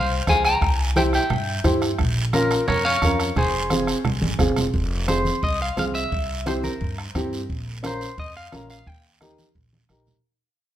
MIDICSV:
0, 0, Header, 1, 6, 480
1, 0, Start_track
1, 0, Key_signature, -4, "minor"
1, 0, Tempo, 343840
1, 859, Time_signature, 4, 2, 24, 8
1, 15013, End_track
2, 0, Start_track
2, 0, Title_t, "Clean electric guitar"
2, 0, Program_c, 0, 27
2, 0, Note_on_c, 0, 72, 70
2, 0, Note_on_c, 0, 77, 95
2, 358, Note_off_c, 0, 72, 0
2, 400, Note_off_c, 0, 77, 0
2, 409, Note_on_c, 0, 80, 106
2, 418, Note_on_c, 0, 77, 82
2, 618, Note_off_c, 0, 80, 0
2, 623, Note_off_c, 0, 77, 0
2, 631, Note_on_c, 0, 82, 100
2, 652, Note_on_c, 0, 79, 80
2, 1295, Note_off_c, 0, 82, 0
2, 1306, Note_off_c, 0, 79, 0
2, 1351, Note_on_c, 0, 79, 100
2, 1364, Note_on_c, 0, 76, 78
2, 1421, Note_off_c, 0, 79, 0
2, 1434, Note_off_c, 0, 76, 0
2, 1606, Note_on_c, 0, 76, 66
2, 1607, Note_on_c, 0, 79, 91
2, 2494, Note_off_c, 0, 79, 0
2, 2497, Note_off_c, 0, 76, 0
2, 3263, Note_on_c, 0, 70, 87
2, 3269, Note_on_c, 0, 65, 69
2, 3710, Note_off_c, 0, 65, 0
2, 3730, Note_off_c, 0, 70, 0
2, 3737, Note_on_c, 0, 73, 96
2, 3747, Note_on_c, 0, 70, 78
2, 3960, Note_off_c, 0, 73, 0
2, 3965, Note_off_c, 0, 70, 0
2, 3977, Note_on_c, 0, 77, 105
2, 3989, Note_on_c, 0, 73, 87
2, 4652, Note_off_c, 0, 73, 0
2, 4714, Note_on_c, 0, 68, 72
2, 4718, Note_off_c, 0, 77, 0
2, 4719, Note_on_c, 0, 72, 75
2, 6088, Note_off_c, 0, 72, 0
2, 6090, Note_off_c, 0, 68, 0
2, 7095, Note_on_c, 0, 72, 88
2, 7589, Note_off_c, 0, 72, 0
2, 7589, Note_on_c, 0, 75, 92
2, 7806, Note_off_c, 0, 75, 0
2, 7845, Note_on_c, 0, 77, 92
2, 8069, Note_off_c, 0, 77, 0
2, 8086, Note_on_c, 0, 77, 95
2, 8155, Note_off_c, 0, 77, 0
2, 8305, Note_on_c, 0, 76, 100
2, 9039, Note_on_c, 0, 72, 87
2, 9042, Note_off_c, 0, 76, 0
2, 9109, Note_off_c, 0, 72, 0
2, 9267, Note_on_c, 0, 70, 70
2, 9708, Note_off_c, 0, 70, 0
2, 10974, Note_on_c, 0, 72, 74
2, 11403, Note_off_c, 0, 72, 0
2, 11440, Note_on_c, 0, 75, 84
2, 11674, Note_off_c, 0, 75, 0
2, 11680, Note_on_c, 0, 77, 90
2, 12134, Note_off_c, 0, 77, 0
2, 12151, Note_on_c, 0, 77, 84
2, 12386, Note_off_c, 0, 77, 0
2, 12386, Note_on_c, 0, 79, 92
2, 13821, Note_off_c, 0, 79, 0
2, 15013, End_track
3, 0, Start_track
3, 0, Title_t, "Upright piano"
3, 0, Program_c, 1, 0
3, 382, Note_on_c, 1, 65, 64
3, 391, Note_on_c, 1, 68, 65
3, 393, Note_on_c, 1, 72, 73
3, 717, Note_off_c, 1, 65, 0
3, 721, Note_off_c, 1, 68, 0
3, 722, Note_off_c, 1, 72, 0
3, 1339, Note_on_c, 1, 64, 81
3, 1347, Note_on_c, 1, 72, 88
3, 1349, Note_on_c, 1, 67, 75
3, 1675, Note_off_c, 1, 64, 0
3, 1679, Note_off_c, 1, 72, 0
3, 1680, Note_off_c, 1, 67, 0
3, 2291, Note_on_c, 1, 64, 82
3, 2299, Note_on_c, 1, 67, 75
3, 2300, Note_on_c, 1, 72, 89
3, 2631, Note_off_c, 1, 64, 0
3, 2635, Note_off_c, 1, 67, 0
3, 2635, Note_off_c, 1, 72, 0
3, 3268, Note_on_c, 1, 61, 81
3, 3277, Note_on_c, 1, 65, 72
3, 3284, Note_on_c, 1, 70, 84
3, 3599, Note_off_c, 1, 61, 0
3, 3603, Note_off_c, 1, 65, 0
3, 3607, Note_off_c, 1, 70, 0
3, 4233, Note_on_c, 1, 61, 70
3, 4237, Note_on_c, 1, 65, 71
3, 4248, Note_on_c, 1, 70, 80
3, 4561, Note_off_c, 1, 61, 0
3, 4563, Note_off_c, 1, 65, 0
3, 4568, Note_off_c, 1, 70, 0
3, 5171, Note_on_c, 1, 60, 80
3, 5175, Note_on_c, 1, 65, 74
3, 5182, Note_on_c, 1, 68, 86
3, 5509, Note_off_c, 1, 60, 0
3, 5511, Note_off_c, 1, 65, 0
3, 5515, Note_off_c, 1, 68, 0
3, 6122, Note_on_c, 1, 60, 84
3, 6130, Note_on_c, 1, 65, 77
3, 6138, Note_on_c, 1, 68, 91
3, 6464, Note_off_c, 1, 60, 0
3, 6468, Note_off_c, 1, 65, 0
3, 6473, Note_off_c, 1, 68, 0
3, 7087, Note_on_c, 1, 60, 70
3, 7094, Note_on_c, 1, 65, 66
3, 7096, Note_on_c, 1, 68, 81
3, 7427, Note_off_c, 1, 60, 0
3, 7430, Note_off_c, 1, 65, 0
3, 7432, Note_off_c, 1, 68, 0
3, 8050, Note_on_c, 1, 60, 65
3, 8056, Note_on_c, 1, 65, 59
3, 8057, Note_on_c, 1, 68, 72
3, 8389, Note_off_c, 1, 60, 0
3, 8391, Note_off_c, 1, 65, 0
3, 8392, Note_off_c, 1, 68, 0
3, 9016, Note_on_c, 1, 60, 76
3, 9024, Note_on_c, 1, 64, 63
3, 9027, Note_on_c, 1, 67, 78
3, 9352, Note_off_c, 1, 60, 0
3, 9356, Note_off_c, 1, 64, 0
3, 9357, Note_off_c, 1, 67, 0
3, 9981, Note_on_c, 1, 60, 77
3, 9993, Note_on_c, 1, 64, 68
3, 9993, Note_on_c, 1, 67, 85
3, 10314, Note_off_c, 1, 60, 0
3, 10320, Note_off_c, 1, 64, 0
3, 10320, Note_off_c, 1, 67, 0
3, 10926, Note_on_c, 1, 61, 72
3, 10932, Note_on_c, 1, 65, 67
3, 10943, Note_on_c, 1, 70, 83
3, 11267, Note_off_c, 1, 61, 0
3, 11270, Note_off_c, 1, 65, 0
3, 11275, Note_off_c, 1, 70, 0
3, 11897, Note_on_c, 1, 61, 69
3, 11905, Note_on_c, 1, 65, 58
3, 11906, Note_on_c, 1, 70, 77
3, 12232, Note_off_c, 1, 61, 0
3, 12236, Note_off_c, 1, 65, 0
3, 12237, Note_off_c, 1, 70, 0
3, 12850, Note_on_c, 1, 63, 72
3, 12858, Note_on_c, 1, 67, 67
3, 12860, Note_on_c, 1, 70, 75
3, 13189, Note_off_c, 1, 63, 0
3, 13193, Note_off_c, 1, 67, 0
3, 13194, Note_off_c, 1, 70, 0
3, 13813, Note_on_c, 1, 63, 70
3, 13819, Note_on_c, 1, 70, 79
3, 13823, Note_on_c, 1, 67, 66
3, 14150, Note_off_c, 1, 63, 0
3, 14153, Note_off_c, 1, 70, 0
3, 14155, Note_off_c, 1, 67, 0
3, 15013, End_track
4, 0, Start_track
4, 0, Title_t, "Upright bass"
4, 0, Program_c, 2, 32
4, 0, Note_on_c, 2, 36, 99
4, 290, Note_off_c, 2, 36, 0
4, 383, Note_on_c, 2, 36, 88
4, 766, Note_off_c, 2, 36, 0
4, 856, Note_on_c, 2, 36, 98
4, 1625, Note_off_c, 2, 36, 0
4, 1820, Note_on_c, 2, 43, 89
4, 2203, Note_off_c, 2, 43, 0
4, 2298, Note_on_c, 2, 43, 91
4, 2682, Note_off_c, 2, 43, 0
4, 2782, Note_on_c, 2, 34, 90
4, 3548, Note_off_c, 2, 34, 0
4, 3748, Note_on_c, 2, 41, 98
4, 4127, Note_off_c, 2, 41, 0
4, 4220, Note_on_c, 2, 41, 94
4, 4602, Note_off_c, 2, 41, 0
4, 4695, Note_on_c, 2, 29, 98
4, 5463, Note_off_c, 2, 29, 0
4, 5654, Note_on_c, 2, 36, 94
4, 5847, Note_off_c, 2, 36, 0
4, 5893, Note_on_c, 2, 32, 80
4, 6110, Note_off_c, 2, 32, 0
4, 6126, Note_on_c, 2, 31, 85
4, 6346, Note_off_c, 2, 31, 0
4, 6375, Note_on_c, 2, 29, 83
4, 6591, Note_off_c, 2, 29, 0
4, 6616, Note_on_c, 2, 29, 92
4, 7383, Note_off_c, 2, 29, 0
4, 7579, Note_on_c, 2, 36, 82
4, 7962, Note_off_c, 2, 36, 0
4, 8057, Note_on_c, 2, 36, 82
4, 8440, Note_off_c, 2, 36, 0
4, 8541, Note_on_c, 2, 36, 92
4, 9307, Note_off_c, 2, 36, 0
4, 9510, Note_on_c, 2, 43, 90
4, 9888, Note_off_c, 2, 43, 0
4, 9981, Note_on_c, 2, 43, 87
4, 10363, Note_off_c, 2, 43, 0
4, 10465, Note_on_c, 2, 34, 85
4, 11229, Note_off_c, 2, 34, 0
4, 11417, Note_on_c, 2, 41, 93
4, 11800, Note_off_c, 2, 41, 0
4, 11911, Note_on_c, 2, 34, 82
4, 12289, Note_off_c, 2, 34, 0
4, 12375, Note_on_c, 2, 39, 83
4, 13143, Note_off_c, 2, 39, 0
4, 13335, Note_on_c, 2, 34, 83
4, 13719, Note_off_c, 2, 34, 0
4, 13811, Note_on_c, 2, 34, 81
4, 14197, Note_off_c, 2, 34, 0
4, 15013, End_track
5, 0, Start_track
5, 0, Title_t, "Two-headed folk drums"
5, 380, Note_on_c, 9, 37, 82
5, 382, Note_on_c, 9, 36, 85
5, 520, Note_off_c, 9, 37, 0
5, 522, Note_off_c, 9, 36, 0
5, 621, Note_on_c, 9, 37, 82
5, 760, Note_off_c, 9, 37, 0
5, 861, Note_on_c, 9, 36, 87
5, 867, Note_on_c, 9, 37, 82
5, 1001, Note_off_c, 9, 36, 0
5, 1006, Note_off_c, 9, 37, 0
5, 1348, Note_on_c, 9, 37, 86
5, 1487, Note_off_c, 9, 37, 0
5, 1577, Note_on_c, 9, 37, 81
5, 1717, Note_off_c, 9, 37, 0
5, 1820, Note_on_c, 9, 37, 88
5, 1959, Note_off_c, 9, 37, 0
5, 2296, Note_on_c, 9, 37, 79
5, 2298, Note_on_c, 9, 36, 82
5, 2436, Note_off_c, 9, 37, 0
5, 2438, Note_off_c, 9, 36, 0
5, 2538, Note_on_c, 9, 37, 80
5, 2677, Note_off_c, 9, 37, 0
5, 2771, Note_on_c, 9, 37, 81
5, 2776, Note_on_c, 9, 36, 79
5, 2910, Note_off_c, 9, 37, 0
5, 2916, Note_off_c, 9, 36, 0
5, 3255, Note_on_c, 9, 37, 84
5, 3395, Note_off_c, 9, 37, 0
5, 3505, Note_on_c, 9, 37, 87
5, 3644, Note_off_c, 9, 37, 0
5, 3747, Note_on_c, 9, 37, 91
5, 3886, Note_off_c, 9, 37, 0
5, 4214, Note_on_c, 9, 37, 85
5, 4216, Note_on_c, 9, 36, 88
5, 4354, Note_off_c, 9, 37, 0
5, 4356, Note_off_c, 9, 36, 0
5, 4460, Note_on_c, 9, 37, 88
5, 4600, Note_off_c, 9, 37, 0
5, 4695, Note_on_c, 9, 36, 81
5, 4697, Note_on_c, 9, 37, 76
5, 4834, Note_off_c, 9, 36, 0
5, 4836, Note_off_c, 9, 37, 0
5, 5168, Note_on_c, 9, 37, 83
5, 5308, Note_off_c, 9, 37, 0
5, 5408, Note_on_c, 9, 37, 84
5, 5547, Note_off_c, 9, 37, 0
5, 5649, Note_on_c, 9, 37, 89
5, 5788, Note_off_c, 9, 37, 0
5, 6127, Note_on_c, 9, 37, 81
5, 6130, Note_on_c, 9, 36, 79
5, 6267, Note_off_c, 9, 37, 0
5, 6270, Note_off_c, 9, 36, 0
5, 6371, Note_on_c, 9, 37, 82
5, 6511, Note_off_c, 9, 37, 0
5, 6613, Note_on_c, 9, 36, 82
5, 6753, Note_off_c, 9, 36, 0
5, 7092, Note_on_c, 9, 37, 83
5, 7232, Note_off_c, 9, 37, 0
5, 7576, Note_on_c, 9, 36, 81
5, 7716, Note_off_c, 9, 36, 0
5, 8059, Note_on_c, 9, 37, 75
5, 8199, Note_off_c, 9, 37, 0
5, 8544, Note_on_c, 9, 36, 76
5, 8683, Note_off_c, 9, 36, 0
5, 9028, Note_on_c, 9, 37, 82
5, 9168, Note_off_c, 9, 37, 0
5, 9505, Note_on_c, 9, 36, 84
5, 9645, Note_off_c, 9, 36, 0
5, 9749, Note_on_c, 9, 37, 73
5, 9888, Note_off_c, 9, 37, 0
5, 9982, Note_on_c, 9, 36, 69
5, 9983, Note_on_c, 9, 37, 75
5, 10121, Note_off_c, 9, 36, 0
5, 10122, Note_off_c, 9, 37, 0
5, 10462, Note_on_c, 9, 36, 78
5, 10601, Note_off_c, 9, 36, 0
5, 10941, Note_on_c, 9, 37, 80
5, 11080, Note_off_c, 9, 37, 0
5, 11419, Note_on_c, 9, 36, 84
5, 11559, Note_off_c, 9, 36, 0
5, 11898, Note_on_c, 9, 37, 73
5, 12037, Note_off_c, 9, 37, 0
5, 12378, Note_on_c, 9, 36, 75
5, 12518, Note_off_c, 9, 36, 0
5, 12853, Note_on_c, 9, 37, 79
5, 12993, Note_off_c, 9, 37, 0
5, 13333, Note_on_c, 9, 36, 76
5, 13473, Note_off_c, 9, 36, 0
5, 13806, Note_on_c, 9, 37, 71
5, 13945, Note_off_c, 9, 37, 0
5, 15013, End_track
6, 0, Start_track
6, 0, Title_t, "Drums"
6, 383, Note_on_c, 9, 63, 85
6, 383, Note_on_c, 9, 73, 66
6, 522, Note_off_c, 9, 73, 0
6, 523, Note_off_c, 9, 63, 0
6, 623, Note_on_c, 9, 73, 71
6, 763, Note_off_c, 9, 73, 0
6, 863, Note_on_c, 9, 63, 32
6, 868, Note_on_c, 9, 74, 70
6, 1002, Note_off_c, 9, 63, 0
6, 1008, Note_off_c, 9, 74, 0
6, 1339, Note_on_c, 9, 63, 84
6, 1347, Note_on_c, 9, 73, 74
6, 1478, Note_off_c, 9, 63, 0
6, 1486, Note_off_c, 9, 73, 0
6, 1586, Note_on_c, 9, 73, 74
6, 1726, Note_off_c, 9, 73, 0
6, 1815, Note_on_c, 9, 74, 72
6, 1819, Note_on_c, 9, 63, 34
6, 1819, Note_on_c, 9, 64, 81
6, 1954, Note_off_c, 9, 74, 0
6, 1958, Note_off_c, 9, 63, 0
6, 1958, Note_off_c, 9, 64, 0
6, 2293, Note_on_c, 9, 73, 65
6, 2302, Note_on_c, 9, 63, 87
6, 2432, Note_off_c, 9, 73, 0
6, 2442, Note_off_c, 9, 63, 0
6, 2537, Note_on_c, 9, 73, 72
6, 2677, Note_off_c, 9, 73, 0
6, 2774, Note_on_c, 9, 63, 34
6, 2774, Note_on_c, 9, 64, 72
6, 2779, Note_on_c, 9, 74, 73
6, 2913, Note_off_c, 9, 63, 0
6, 2913, Note_off_c, 9, 64, 0
6, 2919, Note_off_c, 9, 74, 0
6, 3256, Note_on_c, 9, 63, 78
6, 3260, Note_on_c, 9, 73, 77
6, 3395, Note_off_c, 9, 63, 0
6, 3400, Note_off_c, 9, 73, 0
6, 3499, Note_on_c, 9, 73, 73
6, 3639, Note_off_c, 9, 73, 0
6, 3738, Note_on_c, 9, 63, 35
6, 3738, Note_on_c, 9, 64, 82
6, 3738, Note_on_c, 9, 74, 73
6, 3877, Note_off_c, 9, 63, 0
6, 3877, Note_off_c, 9, 64, 0
6, 3878, Note_off_c, 9, 74, 0
6, 4215, Note_on_c, 9, 63, 81
6, 4220, Note_on_c, 9, 73, 68
6, 4354, Note_off_c, 9, 63, 0
6, 4360, Note_off_c, 9, 73, 0
6, 4463, Note_on_c, 9, 73, 72
6, 4603, Note_off_c, 9, 73, 0
6, 4690, Note_on_c, 9, 63, 32
6, 4690, Note_on_c, 9, 64, 73
6, 4704, Note_on_c, 9, 74, 68
6, 4830, Note_off_c, 9, 63, 0
6, 4830, Note_off_c, 9, 64, 0
6, 4844, Note_off_c, 9, 74, 0
6, 5172, Note_on_c, 9, 63, 76
6, 5173, Note_on_c, 9, 73, 77
6, 5312, Note_off_c, 9, 63, 0
6, 5313, Note_off_c, 9, 73, 0
6, 5419, Note_on_c, 9, 73, 74
6, 5558, Note_off_c, 9, 73, 0
6, 5649, Note_on_c, 9, 63, 31
6, 5649, Note_on_c, 9, 64, 83
6, 5659, Note_on_c, 9, 74, 65
6, 5789, Note_off_c, 9, 63, 0
6, 5789, Note_off_c, 9, 64, 0
6, 5798, Note_off_c, 9, 74, 0
6, 5887, Note_on_c, 9, 63, 99
6, 6027, Note_off_c, 9, 63, 0
6, 6132, Note_on_c, 9, 64, 76
6, 6132, Note_on_c, 9, 73, 73
6, 6271, Note_off_c, 9, 64, 0
6, 6272, Note_off_c, 9, 73, 0
6, 6374, Note_on_c, 9, 73, 76
6, 6384, Note_on_c, 9, 64, 78
6, 6513, Note_off_c, 9, 73, 0
6, 6523, Note_off_c, 9, 64, 0
6, 6611, Note_on_c, 9, 74, 68
6, 6622, Note_on_c, 9, 63, 33
6, 6751, Note_off_c, 9, 74, 0
6, 6761, Note_off_c, 9, 63, 0
6, 7096, Note_on_c, 9, 73, 75
6, 7098, Note_on_c, 9, 63, 80
6, 7236, Note_off_c, 9, 73, 0
6, 7237, Note_off_c, 9, 63, 0
6, 7329, Note_on_c, 9, 63, 68
6, 7345, Note_on_c, 9, 73, 70
6, 7469, Note_off_c, 9, 63, 0
6, 7484, Note_off_c, 9, 73, 0
6, 7579, Note_on_c, 9, 74, 65
6, 7586, Note_on_c, 9, 63, 32
6, 7718, Note_off_c, 9, 74, 0
6, 7726, Note_off_c, 9, 63, 0
6, 8057, Note_on_c, 9, 73, 64
6, 8070, Note_on_c, 9, 63, 76
6, 8197, Note_off_c, 9, 73, 0
6, 8209, Note_off_c, 9, 63, 0
6, 8300, Note_on_c, 9, 73, 71
6, 8440, Note_off_c, 9, 73, 0
6, 8548, Note_on_c, 9, 74, 65
6, 8550, Note_on_c, 9, 63, 33
6, 8687, Note_off_c, 9, 74, 0
6, 8690, Note_off_c, 9, 63, 0
6, 9022, Note_on_c, 9, 73, 68
6, 9026, Note_on_c, 9, 63, 82
6, 9162, Note_off_c, 9, 73, 0
6, 9165, Note_off_c, 9, 63, 0
6, 9260, Note_on_c, 9, 63, 66
6, 9270, Note_on_c, 9, 73, 66
6, 9400, Note_off_c, 9, 63, 0
6, 9409, Note_off_c, 9, 73, 0
6, 9504, Note_on_c, 9, 74, 64
6, 9511, Note_on_c, 9, 63, 31
6, 9643, Note_off_c, 9, 74, 0
6, 9650, Note_off_c, 9, 63, 0
6, 9983, Note_on_c, 9, 73, 62
6, 9989, Note_on_c, 9, 63, 70
6, 10122, Note_off_c, 9, 73, 0
6, 10129, Note_off_c, 9, 63, 0
6, 10232, Note_on_c, 9, 73, 70
6, 10371, Note_off_c, 9, 73, 0
6, 10467, Note_on_c, 9, 74, 62
6, 10473, Note_on_c, 9, 63, 32
6, 10606, Note_off_c, 9, 74, 0
6, 10613, Note_off_c, 9, 63, 0
6, 10941, Note_on_c, 9, 73, 69
6, 10951, Note_on_c, 9, 63, 80
6, 11080, Note_off_c, 9, 73, 0
6, 11091, Note_off_c, 9, 63, 0
6, 11184, Note_on_c, 9, 73, 64
6, 11324, Note_off_c, 9, 73, 0
6, 11421, Note_on_c, 9, 74, 68
6, 11432, Note_on_c, 9, 63, 31
6, 11561, Note_off_c, 9, 74, 0
6, 11571, Note_off_c, 9, 63, 0
6, 11900, Note_on_c, 9, 63, 70
6, 11901, Note_on_c, 9, 73, 60
6, 12039, Note_off_c, 9, 63, 0
6, 12040, Note_off_c, 9, 73, 0
6, 12142, Note_on_c, 9, 73, 68
6, 12282, Note_off_c, 9, 73, 0
6, 12386, Note_on_c, 9, 63, 30
6, 12392, Note_on_c, 9, 74, 61
6, 12525, Note_off_c, 9, 63, 0
6, 12531, Note_off_c, 9, 74, 0
6, 12865, Note_on_c, 9, 73, 67
6, 12868, Note_on_c, 9, 63, 84
6, 13005, Note_off_c, 9, 73, 0
6, 13008, Note_off_c, 9, 63, 0
6, 13101, Note_on_c, 9, 73, 64
6, 13106, Note_on_c, 9, 63, 64
6, 13240, Note_off_c, 9, 73, 0
6, 13246, Note_off_c, 9, 63, 0
6, 13342, Note_on_c, 9, 74, 57
6, 13348, Note_on_c, 9, 63, 30
6, 13482, Note_off_c, 9, 74, 0
6, 13487, Note_off_c, 9, 63, 0
6, 13583, Note_on_c, 9, 63, 80
6, 13723, Note_off_c, 9, 63, 0
6, 13812, Note_on_c, 9, 73, 62
6, 13819, Note_on_c, 9, 63, 75
6, 13952, Note_off_c, 9, 73, 0
6, 13959, Note_off_c, 9, 63, 0
6, 14058, Note_on_c, 9, 64, 83
6, 14058, Note_on_c, 9, 73, 65
6, 14197, Note_off_c, 9, 73, 0
6, 14198, Note_off_c, 9, 64, 0
6, 15013, End_track
0, 0, End_of_file